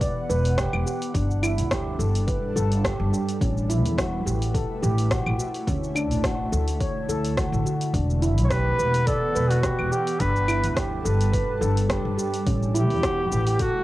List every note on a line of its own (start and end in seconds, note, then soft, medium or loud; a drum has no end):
0.00 1.12 E3 medium
0.00 1.12 B3 medium
0.00 0.16 D5 medium
0.00 1.12 F#5 medium
0.00 kick loud
0.00 open hi-hat medium
0.00 shaker soft
0.30 0.66 E1 medium
0.30 0.44 B4 loud
0.30 shaker medium
0.45 open hi-hat soft
0.45 shaker soft
0.58 0.72 G4 medium
0.58 kick loud
0.58 cross-stick loud
0.58 open hi-hat medium
0.58 shaker soft
0.73 0.82 E1 medium
0.73 claves medium
0.86 1.01 G4 medium
0.86 shaker medium
1.02 open hi-hat soft
1.02 shaker soft
1.14 1.60 G1 loud
1.14 3.38 G3 medium
1.14 3.39 D4 medium
1.14 1.29 D4 medium
1.14 3.38 A4 medium
1.14 kick loud
1.14 open hi-hat medium
1.14 shaker soft
1.31 shaker soft
1.43 1.70 E4 loud
1.43 open hi-hat soft
1.43 claves medium
1.43 shaker medium
1.58 1.93 D2 medium
1.58 open hi-hat soft
1.58 shaker soft
1.71 1.86 G4 medium
1.71 kick loud
1.71 cross-stick loud
1.71 open hi-hat medium
1.71 shaker soft
1.99 2.36 G1 medium
1.99 2.26 A4 medium
1.99 shaker medium
2.15 open hi-hat soft
2.15 shaker soft
2.27 2.42 B4 medium
2.27 kick loud
2.27 open hi-hat medium
2.27 shaker soft
2.56 2.92 G1 medium
2.56 2.71 A4 loud
2.56 shaker medium
2.72 open hi-hat soft
2.72 shaker soft
2.84 2.99 G4 medium
2.84 kick loud
2.84 cross-stick loud
2.84 open hi-hat medium
2.84 shaker soft
3.00 3.09 G1 medium
3.13 3.28 G4 medium
3.13 shaker medium
3.29 open hi-hat soft
3.29 shaker soft
3.41 3.85 A1 loud
3.41 7.90 A3 medium
3.41 3.56 C#4 medium
3.41 7.90 E4 medium
3.41 5.65 B4 medium
3.41 kick loud
3.41 open hi-hat medium
3.41 shaker soft
3.58 shaker soft
3.69 3.96 E4 loud
3.69 open hi-hat soft
3.69 shaker medium
3.85 4.20 E2 medium
3.85 open hi-hat soft
3.85 shaker soft
3.98 4.12 F#4 medium
3.98 kick loud
3.98 cross-stick loud
3.98 open hi-hat medium
3.98 shaker soft
4.26 4.62 A1 medium
4.26 4.53 G4 medium
4.26 shaker medium
4.42 open hi-hat soft
4.42 shaker soft
4.54 4.69 A4 medium
4.54 kick loud
4.54 open hi-hat soft
4.54 shaker soft
4.82 5.19 A1 loud
4.82 4.97 G4 loud
4.82 shaker medium
4.98 open hi-hat soft
4.98 shaker soft
5.11 5.25 F#4 medium
5.11 kick loud
5.11 cross-stick loud
5.11 open hi-hat medium
5.11 shaker soft
5.26 5.35 A1 medium
5.26 claves medium
5.39 5.54 F#4 medium
5.39 shaker medium
5.54 open hi-hat soft
5.54 shaker soft
5.67 6.11 D2 loud
5.67 7.92 D3 medium
5.67 5.82 C#4 medium
5.67 kick loud
5.67 open hi-hat medium
5.67 shaker soft
5.84 shaker soft
5.95 6.22 D4 loud
5.95 open hi-hat soft
5.95 claves medium
5.95 shaker medium
6.11 6.46 A1 medium
6.11 open hi-hat soft
6.11 shaker soft
6.24 6.39 F#4 medium
6.24 kick loud
6.24 cross-stick loud
6.24 open hi-hat medium
6.24 shaker soft
6.52 6.89 D2 medium
6.52 6.79 A4 medium
6.52 shaker medium
6.68 open hi-hat soft
6.68 shaker soft
6.81 6.95 C#5 medium
6.81 kick loud
6.81 open hi-hat soft
6.81 shaker soft
7.09 7.45 D2 medium
7.09 7.24 A4 loud
7.09 shaker medium
7.25 open hi-hat soft
7.25 shaker soft
7.37 7.52 F#4 medium
7.37 kick loud
7.37 cross-stick medium
7.37 open hi-hat soft
7.37 shaker soft
7.52 7.62 A1 medium
7.52 shaker soft
7.66 7.80 F#4 medium
7.66 shaker medium
7.81 open hi-hat soft
7.81 shaker soft
7.92 8.38 E1 loud
7.92 10.17 E3 medium
7.92 10.17 B3 medium
7.92 8.09 D4 medium
7.92 10.17 F#5 medium
7.92 kick loud
7.92 open hi-hat soft
7.92 shaker soft
8.10 shaker soft
8.22 8.49 E4 loud
8.22 open hi-hat soft
8.22 shaker medium
8.38 8.73 B1 medium
8.38 open hi-hat soft
8.38 shaker soft
8.44 8.51 C#5 medium
8.50 8.65 G4 medium
8.50 9.09 B4 loud
8.50 kick loud
8.50 cross-stick medium
8.50 open hi-hat soft
8.50 shaker soft
8.79 9.15 E1 medium
8.79 9.06 B4 medium
8.79 shaker medium
8.94 open hi-hat soft
8.94 shaker soft
9.07 9.52 A4 loud
9.07 9.22 D5 medium
9.07 kick loud
9.07 open hi-hat medium
9.07 shaker soft
9.35 9.72 E1 medium
9.35 9.50 B4 loud
9.35 shaker medium
9.50 9.93 F#4 medium
9.50 open hi-hat soft
9.50 shaker soft
9.63 9.78 G4 medium
9.63 kick medium
9.63 cross-stick medium
9.63 open hi-hat medium
9.63 shaker soft
9.79 9.88 E1 medium
9.79 claves medium
9.92 10.22 G4 medium
9.92 10.07 G4 medium
9.92 shaker medium
10.07 open hi-hat soft
10.07 shaker soft
10.20 10.66 G1 loud
10.20 12.45 G3 medium
10.20 10.35 D4 medium
10.20 12.44 D4 medium
10.20 12.44 A4 medium
10.20 10.77 B4 loud
10.20 kick loud
10.20 open hi-hat medium
10.20 shaker soft
10.36 shaker soft
10.48 10.75 E4 loud
10.48 open hi-hat soft
10.48 claves medium
10.48 shaker medium
10.64 10.99 D2 medium
10.64 open hi-hat soft
10.64 shaker soft
10.76 10.91 G4 medium
10.76 kick loud
10.76 cross-stick medium
10.76 open hi-hat medium
10.76 shaker soft
11.05 11.42 G1 loud
11.05 11.32 A4 medium
11.05 shaker medium
11.21 open hi-hat soft
11.21 shaker soft
11.33 11.48 B4 medium
11.33 kick loud
11.33 open hi-hat medium
11.33 shaker soft
11.61 11.98 G1 loud
11.61 11.76 A4 loud
11.61 shaker medium
11.77 open hi-hat soft
11.77 shaker soft
11.89 12.04 G4 medium
11.89 kick medium
11.89 cross-stick loud
11.89 open hi-hat medium
11.89 shaker soft
12.05 12.14 G1 medium
12.17 12.33 G4 medium
12.17 shaker medium
12.34 open hi-hat soft
12.34 shaker soft
12.46 12.90 A1 loud
12.46 13.84 A3 medium
12.46 12.61 C#4 medium
12.46 13.84 E4 medium
12.46 13.84 B4 medium
12.46 kick loud
12.46 open hi-hat medium
12.46 shaker soft
12.63 shaker soft
12.74 13.02 E4 loud
12.74 13.57 G4 loud
12.74 open hi-hat soft
12.74 shaker medium
12.90 13.25 E2 medium
12.90 open hi-hat soft
12.90 shaker soft
13.03 13.18 F#4 medium
13.03 kick loud
13.03 cross-stick medium
13.03 open hi-hat medium
13.03 shaker soft
13.31 13.68 A1 medium
13.31 13.58 G4 medium
13.31 shaker medium
13.47 open hi-hat soft
13.47 shaker soft
13.59 13.84 F#4 loud
13.59 13.74 A4 medium
13.59 kick medium
13.59 open hi-hat medium
13.59 shaker soft